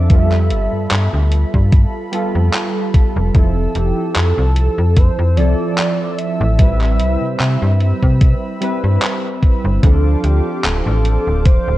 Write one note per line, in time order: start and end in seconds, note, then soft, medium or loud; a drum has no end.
0.00 0.52 F2 loud
0.00 0.12 F3 medium
0.00 0.13 C4 medium
0.00 0.12 D4 medium
0.00 3.31 F4 medium
0.00 0.12 A4 loud
0.00 2.13 E5 loud
0.09 2.08 G3 medium
0.09 2.08 B3 medium
0.09 2.09 F4 medium
0.09 6.55 A4 medium
0.09 2.09 A4 medium
0.09 3.31 B5 medium
0.09 kick loud
0.09 closed hi-hat medium
0.32 clap soft
0.50 0.68 G1 medium
0.50 closed hi-hat medium
0.73 0.88 G2 soft
0.91 1.09 G2 medium
0.91 clap loud
0.91 closed hi-hat medium
1.13 1.45 D2 medium
1.32 closed hi-hat medium
1.54 1.85 G2 medium
1.54 kick medium
1.72 kick loud
1.72 closed hi-hat medium
2.11 3.29 G3 medium
2.11 3.30 B3 medium
2.11 3.30 F4 medium
2.11 3.31 A4 loud
2.11 closed hi-hat medium
2.35 2.50 F2 medium
2.53 clap loud
2.53 closed hi-hat medium
2.94 kick loud
2.94 closed hi-hat medium
3.16 3.31 F1 loud
3.33 3.67 F1 loud
3.33 5.32 F3 medium
3.33 5.33 C4 medium
3.33 5.33 E4 medium
3.33 5.34 A4 medium
3.33 9.79 E6 medium
3.33 kick loud
3.33 closed hi-hat medium
3.75 3.93 F1 medium
3.75 4.17 G4 medium
3.75 closed hi-hat medium
4.16 4.33 F2 medium
4.16 4.98 A4 loud
4.16 clap loud
4.16 closed hi-hat medium
4.38 4.69 C2 medium
4.56 closed hi-hat medium
4.78 5.09 F2 medium
4.97 5.38 C5 loud
4.97 kick loud
4.97 closed hi-hat medium
5.19 5.39 F2 medium
5.36 5.55 C2 medium
5.36 6.54 F3 loud
5.36 6.54 C4 medium
5.36 6.55 E4 medium
5.36 6.55 A4 loud
5.36 6.19 D5 loud
5.36 closed hi-hat medium
5.78 clap loud
5.78 closed hi-hat medium
6.18 8.61 E5 loud
6.18 closed hi-hat medium
6.40 7.01 A1 loud
6.58 8.57 G3 medium
6.58 8.57 C4 medium
6.58 9.80 C4 medium
6.58 8.58 E4 medium
6.58 8.58 B4 medium
6.58 9.80 B5 medium
6.58 kick loud
6.58 closed hi-hat medium
6.81 clap soft
6.99 7.17 C2 medium
6.99 closed hi-hat medium
7.21 7.36 C3 soft
7.40 7.57 C3 medium
7.40 clap loud
7.40 closed hi-hat medium
7.62 7.93 G2 medium
7.81 closed hi-hat medium
8.03 8.34 C3 medium
8.03 kick medium
8.21 kick loud
8.21 closed hi-hat medium
8.60 9.78 G3 loud
8.60 9.79 C4 medium
8.60 9.79 E4 medium
8.60 9.80 B4 loud
8.60 closed hi-hat medium
8.84 8.98 G2 medium
9.02 clap loud
9.02 closed hi-hat medium
9.43 kick loud
9.43 closed hi-hat medium
9.65 9.79 G1 loud
9.82 10.16 D2 loud
9.82 11.78 F3 medium
9.82 11.78 C4 medium
9.82 11.78 D4 medium
9.82 11.78 A4 medium
9.82 11.78 C5 medium
9.82 11.78 F5 medium
9.82 11.78 D6 medium
9.82 kick loud
9.82 closed hi-hat medium
10.24 10.41 D2 medium
10.24 10.66 G4 medium
10.24 closed hi-hat medium
10.64 10.82 D1 medium
10.64 11.47 A4 loud
10.64 clap loud
10.64 closed hi-hat medium
10.86 11.18 A1 loud
11.05 closed hi-hat medium
11.27 11.58 D1 medium
11.45 11.78 C5 loud
11.45 kick loud
11.45 closed hi-hat medium
11.68 11.78 D1 medium